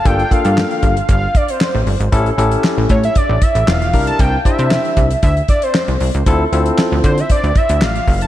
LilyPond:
<<
  \new Staff \with { instrumentName = "Analog synth lead" } { \time 4/4 \key d \minor \tempo 4 = 116 g''8 f''4. f''8 d''16 c''8. r8 | r4. cis''16 e''16 d''8 e''8 f''8. a''16 | g''8 e''4. e''8 d''16 c''8. r8 | r4. c''16 e''16 d''8 e''8 f''8. a''16 | }
  \new Staff \with { instrumentName = "Tine electric piano" } { \time 4/4 \key d \minor <bes d' f' a'>8 <bes d' f' a'>4 r2 r8 | <cis' e' g' a'>8 <cis' e' g' a'>4 r2 <d' e' g' bes'>8~ | <d' e' g' bes'>8 <d' e' g' c''>4 r2 r8 | <c' e' f' a'>8 <c' e' f' a'>4 r2 r8 | }
  \new Staff \with { instrumentName = "Analog synth bass" } { \clef bass \time 4/4 \key d \minor g,,8 r16 g,8 r16 g,,8 g,,8 r8. a,,16 g,,16 gis,,16 | a,,8 a,,8 r16 a,,16 a,8 r16 a,,16 r16 a,,16 e,,8 c,8 | c,8 r16 c8 r16 c,8 d,8 r8. c,16 c,16 cis,16 | d,8 d,8 r16 d,16 d8 r16 d,16 r16 d,16 a,,8 fis,,8 | }
  \new DrumStaff \with { instrumentName = "Drums" } \drummode { \time 4/4 <hh bd>16 hh16 <hh bd>16 hh16 <hc sn>16 hh16 <hh bd>16 hh16 <hh bd>8 <hh bd>16 hh16 <hc sn>8 hho16 hh16 | <hh bd>16 hh16 hh16 hh16 <hc sn>8 <hh bd>16 hh16 <hh bd>8 <hh bd>16 hh16 <hc sn>16 hh16 <hho bd>16 hh16 | <hh bd>8 <hh bd>16 hh16 <hc sn>16 hh16 <hh bd>16 hh16 <hh bd>16 hh16 <hh bd>16 hh16 <hc sn>16 hh16 hho16 hh16 | <hh bd>8 hh16 hh16 <hc sn>8 <hh bd>16 hh16 <hh bd>16 hh16 <hh bd>16 hh16 <hc sn>16 hh16 <hho bd>16 hh16 | }
>>